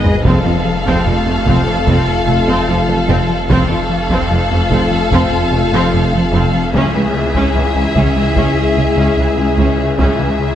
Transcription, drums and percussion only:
0.05 taiko low
0.25 taiko
0.86 taiko
1.47 taiko
1.87 taiko
3.50 taiko
4.10 taiko
4.71 taiko
5.12 taiko
6.74 taiko
7.35 taiko
7.95 taiko
8.36 taiko
9.98 taiko

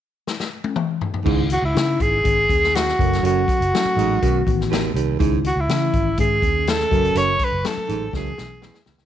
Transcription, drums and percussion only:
0.27 snare
0.40 snare
0.64 high tom
0.76 mid tom
1.01 floor tom
1.14 floor tom
1.26 kick, crash
1.50 closed hi-hat
1.76 snare, closed hi-hat
2.00 kick, closed hi-hat
2.25 kick, closed hi-hat
2.49 kick, closed hi-hat
2.64 snare
2.75 snare, closed hi-hat
2.88 snare
2.99 kick, closed hi-hat
3.13 snare, closed hi-hat
3.25 closed hi-hat
3.48 kick, closed hi-hat
3.62 closed hi-hat
3.75 snare, closed hi-hat
3.99 closed hi-hat
4.22 kick, closed hi-hat
4.47 kick, closed hi-hat
4.61 snare
4.73 snare, closed hi-hat
4.96 closed hi-hat
5.20 kick, closed hi-hat
5.45 closed hi-hat
5.69 snare, closed hi-hat
5.94 kick, closed hi-hat
6.18 kick, closed hi-hat
6.42 kick, closed hi-hat
6.67 snare, closed hi-hat
6.80 snare
6.91 kick, closed hi-hat
7.04 closed hi-hat
7.15 closed hi-hat
7.39 kick, closed hi-hat
7.65 snare, closed hi-hat
7.89 closed hi-hat
8.13 kick, snare
8.38 snare
8.62 snare
8.74 snare
8.86 snare
8.98 snare

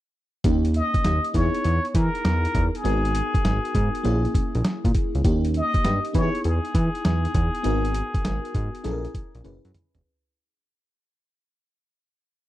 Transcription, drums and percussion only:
0.44 kick, closed hi-hat
0.65 closed hi-hat
0.74 closed hi-hat
0.94 kick, closed hi-hat
1.05 snare, closed hi-hat
1.24 closed hi-hat
1.34 kick, closed hi-hat
1.55 closed hi-hat
1.65 closed hi-hat
1.85 closed hi-hat
1.95 kick, closed hi-hat
2.15 closed hi-hat
2.25 snare, closed hi-hat
2.45 closed hi-hat
2.55 kick, closed hi-hat
2.75 closed hi-hat
2.85 closed hi-hat
3.05 closed hi-hat
3.15 closed hi-hat
3.34 kick, closed hi-hat
3.45 snare, closed hi-hat
3.65 closed hi-hat
3.75 kick, closed hi-hat
3.95 closed hi-hat
4.05 closed hi-hat
4.25 closed hi-hat
4.35 kick, closed hi-hat
4.55 closed hi-hat
4.65 snare, closed hi-hat
4.85 kick, closed hi-hat
4.95 kick, closed hi-hat
5.15 closed hi-hat
5.24 kick, closed hi-hat
5.45 closed hi-hat
5.54 closed hi-hat
5.74 kick, closed hi-hat
5.85 snare, closed hi-hat
6.05 closed hi-hat
6.14 kick, closed hi-hat
6.35 closed hi-hat
6.44 closed hi-hat
6.65 closed hi-hat
6.75 kick, closed hi-hat
6.95 closed hi-hat
7.05 snare, closed hi-hat
7.25 closed hi-hat
7.35 kick, closed hi-hat
7.55 closed hi-hat
7.64 closed hi-hat
7.85 closed hi-hat
7.94 closed hi-hat
8.14 kick, closed hi-hat
8.25 snare, closed hi-hat
8.45 closed hi-hat
8.55 kick, closed hi-hat
8.75 closed hi-hat
8.84 snare, closed hi-hat
9.05 closed hi-hat
9.15 kick, closed hi-hat
9.35 closed hi-hat
9.45 closed hi-hat, high tom
9.65 closed hi-hat
9.74 closed hi-hat, mid tom
9.95 closed hi-hat, floor tom

